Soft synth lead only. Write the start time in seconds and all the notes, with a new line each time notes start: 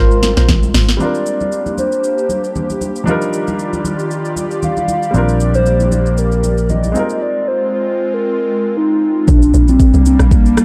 Already playing: A#4
1.01 D5
1.79 C5
4.63 F5
5.15 D5
5.55 C5
5.93 C5
6.18 A#4
6.70 D#5
7.22 D5
7.48 C5
7.74 C5
8.14 A#4
8.77 D#4
9.29 D4
9.69 C4
10.06 C4
10.32 A#3